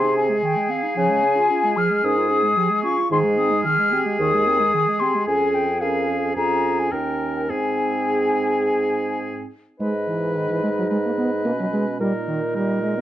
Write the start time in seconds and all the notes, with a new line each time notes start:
Already playing: C3 G#4 C6
0.03 D#4
0.16 C4 G#5
0.29 G#3
0.43 D#3 G5
0.56 G#3
0.69 C4 F5
0.83 D#4
0.96 C#3 F3 G#5
1.09 G#3
1.23 C#4
1.36 F4
1.50 C#4 F4
1.64 G#3
1.77 F3 G#4 F6
1.90 G#3
2.03 G#2 C#4 A#4 D#6
2.17 F4
2.30 C#4 G#4
2.43 G#3
2.57 F3 G4
2.70 G#3
2.84 C#4 F4 C#6
2.97 F4
3.11 G#2 D#3 D#4 G#4 C6
3.24 G#3
3.38 C4 D#6
3.51 G#3
3.65 D#3 G#4 F6
3.79 G#3
3.92 C4 G4
4.05 G#3
4.19 D#2 D#3 G#4 D#6
4.33 G#3
4.46 C4 A#4
4.60 G#3
4.73 D#3 G#4
4.88 G#3
5.00 C4 G4 C6
5.15 G#3
5.27 F2 C#4 G#4 G#5
5.54 G5
5.80 C#4 G#4 A#4 F5
6.09 G#4
6.35 F2 C#4 F4 G#4 A#5
6.79 G#5
6.92 D#2 C#4 A#4 G5
7.36 G5
7.49 G#2 C4 G#4 G#5
9.80 G#2 G#3 D#4 B4 D#5
10.08 E3
10.36 D#3 D#5
10.51 E3
10.64 G#3
10.79 F#3
10.90 G#3 B4
11.05 A#3
11.18 B3
11.45 B2 A#3 C#4
11.60 F#3
11.73 G#3
12.00 A#2 G3 D#4 A#4 D#5
12.28 D#3
12.55 G3 A#4
12.83 G#3
12.98 B3